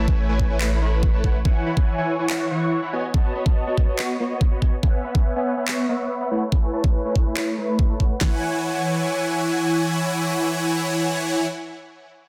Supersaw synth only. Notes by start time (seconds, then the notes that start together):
0.08 A3 E4 B4 C#5 G#5
0.29 A3 E4 B4 C#5 G#5
0.50 A3 E4 B4 C#5 G#5
0.61 A3 E4 B4 C#5 B5
0.82 A3 E4 B4 C#5 B5
1.13 A3 E4 B4 C#5 A5
1.24 A3 E4 B4 C#5 F#5
1.45 E3 E4 C#5 F#5 G#5
1.66 E3 E4 C#5 F#5 B5
1.77 E3 E4 C#5 F#5 G#5
1.98 E3 E4 C#5 F#5 G#5
2.19 E3 E4 C#5 F#5 G#5
2.29 E3 E4 C#5 F#5 C#6
2.51 E3 E4 C#5 F#5 C#6
2.82 E3 E4 C#5 F#5 B5
2.93 B3 F#4 C#5 D#5 G#5
3.14 B3 F#4 C#5 D#5 A5
3.35 B3 F#4 C#5 D#5 B5
3.46 B3 F#4 C#5 D#5 A5
3.67 B3 F#4 C#5 D#5 A5
3.88 B3 F#4 C#5 D#5 A5
3.99 B3 F#4 C#5 D#5 C#6
4.20 B3 F#4 C#5 D#5 C#6
4.51 B3 F#4 C#5 D#5 B5
4.62 B3 F#4 C#5 D#5 G#5
4.83 B3 B4 C#5 E5 F#5 G#5
5.04 B3 B4 C#5 E5 F#5 B5
5.15 B3 B4 C#5 E5 F#5 G#5
5.36 B3 B4 C#5 E5 F#5 G#5
5.57 B3 B4 C#5 E5 F#5 G#5
5.68 B3 B4 C#5 E5 F#5 C#6
5.89 B3 B4 C#5 E5 F#5 C#6
6.20 B3 B4 C#5 E5 F#5 B5
6.31 A3 E4 B4 C#5 F#5
6.52 A3 E4 B4 C#5 G#5
6.73 A3 E4 B4 C#5 A5
6.84 A3 E4 B4 C#5 G#5
7.05 A3 E4 B4 C#5 G#5
7.26 A3 E4 B4 C#5 G#5
7.37 A3 E4 B4 C#5 B5
7.58 A3 E4 B4 C#5 B5
7.89 A3 E4 B4 C#5 A5
8.00 A3 E4 B4 C#5 F#5
8.21 E3 E4 C#5 F#5 G#5